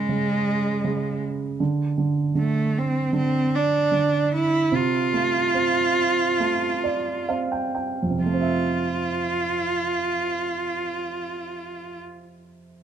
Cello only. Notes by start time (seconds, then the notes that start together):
Already playing: G#3
2.38 A3
2.78 C4
3.17 C4
3.55 D4
4.34 E4
4.76 F4
8.23 F4